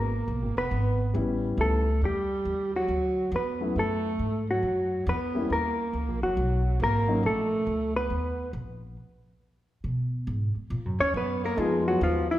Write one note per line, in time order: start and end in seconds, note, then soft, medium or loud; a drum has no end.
0.00 0.26 G#1 medium
0.00 0.52 A#3 medium
0.00 0.53 A#4 medium
0.28 0.42 B1 medium
0.42 0.56 G#1 soft
0.56 0.70 E1 medium
0.56 1.12 B3 medium
0.56 1.12 B4 medium
0.71 1.13 G#1 medium
1.14 1.57 A1 medium
1.14 1.80 G3 medium
1.14 1.81 B3 soft
1.14 1.81 C#4 soft
1.14 1.81 E4 medium
1.57 2.00 C#2 medium
1.57 1.99 A3 soft
1.57 2.00 A4 medium
2.02 2.44 E2 medium
2.02 2.70 G3 medium
2.02 2.71 G4 medium
2.45 2.88 D#2 medium
2.76 3.29 F#3 medium
2.76 3.30 F#4 medium
2.88 3.31 D2 medium
3.32 3.74 E2 medium
3.32 3.74 B3 medium
3.36 3.75 B4 medium
3.60 3.74 F#3 soft
3.60 3.75 A3 soft
3.60 3.75 C#4 soft
3.60 3.75 E4 medium
3.76 4.18 F#2 medium
3.76 4.44 A3 medium
3.76 4.45 A4 medium
4.19 4.61 G#2 medium
4.50 5.03 F#3 medium
4.50 5.04 F#4 medium
4.63 5.05 F#2 medium
5.07 5.49 E2 medium
5.07 5.48 B3 medium
5.07 5.48 B4 medium
5.34 5.48 G3 medium
5.34 5.49 A#3 medium
5.34 5.49 C#4 medium
5.34 5.49 E4 medium
5.50 5.92 D#2 medium
5.50 6.19 A#3 medium
5.50 6.19 A#4 medium
5.93 6.08 C#2 medium
6.08 6.22 A#1 medium
6.22 6.36 F#1 medium
6.22 6.77 F#3 medium
6.22 6.77 F#4 medium
6.37 6.79 B1 medium
6.80 7.22 G#1 medium
6.80 7.21 A#3 medium
6.80 7.22 A#4 medium
7.07 7.22 F#3 medium
7.07 7.22 A#3 medium
7.07 7.22 C#4 medium
7.07 7.22 D#4 medium
7.23 7.65 A#1 medium
7.23 7.92 A3 medium
7.23 7.92 A4 medium
7.66 8.09 C#2 medium
7.96 8.50 B3 medium
7.96 8.51 B4 medium
8.10 8.52 D#2 medium
8.53 8.96 A#1 medium
9.84 10.26 B2 medium
10.27 10.53 G#2 medium
10.55 muted upright bass stroke soft
10.70 10.85 A#2 medium
10.85 10.99 F#2 medium
10.99 11.13 D#2 medium
10.99 11.14 C#4 medium
10.99 11.15 C#5 medium
11.14 11.56 F#2 medium
11.14 11.41 B3 medium
11.14 11.43 B4 medium
11.44 11.62 A#3 medium
11.44 11.61 A#4 medium
11.57 12.00 F2 medium
11.57 12.23 F3 medium
11.57 12.23 G#3 medium
11.57 11.87 G#3 medium
11.57 12.23 B3 medium
11.57 12.23 D#4 medium
11.57 12.24 F4 medium
11.57 11.86 G#4 medium
11.88 12.01 F#3 medium
11.88 12.02 F#4 medium
12.01 12.39 D#2 medium
12.01 12.28 F3 medium
12.01 12.29 F4 medium
12.30 12.39 E3 medium
12.30 12.39 E4 medium